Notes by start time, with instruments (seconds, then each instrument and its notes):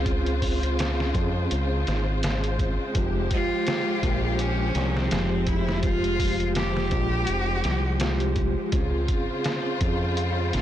Already playing: fingered electric bass C#2, string section C#3 G#3 F4 C5, vibraphone C4 F4 G#4
0.04 vibraphone C4 F4 G#4, kick, closed hi-hat
0.26 closed hi-hat
0.42 kick, open hi-hat
0.60 vibraphone C4 F4, closed hi-hat
0.67 vibraphone G#4
0.79 snare, closed hi-hat
1.00 snare
1.15 fingered electric bass F2, kick, closed hi-hat
1.51 fingered electric bass C#2, closed hi-hat
1.87 fingered electric bass G#1, snare, closed hi-hat
2.23 snare, closed hi-hat
2.44 closed hi-hat
2.59 kick, closed hi-hat
2.94 fingered electric bass F1, string section F3 G4, vibraphone G#3 F4 G4, kick, closed hi-hat
3.31 cello F4, kick, closed hi-hat
3.49 vibraphone G#3 F4
3.56 vibraphone G4
3.67 snare, closed hi-hat
4.03 fingered electric bass A#1, kick, closed hi-hat
4.39 cello C#4, closed hi-hat
4.75 fingered electric bass C2, snare, closed hi-hat
4.97 cello C4, snare
5.11 fingered electric bass F1, vibraphone F3 G#3 G4, snare, closed hi-hat
5.47 cello E4, kick, closed hi-hat
5.69 snare
5.83 vibraphone G#3 F4 G4, cello F4, kick, closed hi-hat
6.04 closed hi-hat
6.20 kick, open hi-hat
6.38 vibraphone G#3 F4, closed hi-hat
6.45 vibraphone G4
6.55 cello G4, snare, closed hi-hat
6.77 snare
6.91 fingered electric bass A#1, kick, closed hi-hat
7.27 fingered electric bass F1, closed hi-hat
7.64 fingered electric bass C2, snare, closed hi-hat
8.00 vibraphone G#3 F4 G4, snare, closed hi-hat
8.20 closed hi-hat
8.36 kick, closed hi-hat
8.72 fingered electric bass C#2, string section C#3 F4 C5, vibraphone C4 F4, kick, closed hi-hat
8.76 vibraphone G#4
9.08 kick, closed hi-hat
9.28 vibraphone C4 F4
9.35 vibraphone G#4
9.44 snare, closed hi-hat
9.81 fingered electric bass F2, kick, closed hi-hat
10.17 closed hi-hat
10.53 fingered electric bass G#1, snare, closed hi-hat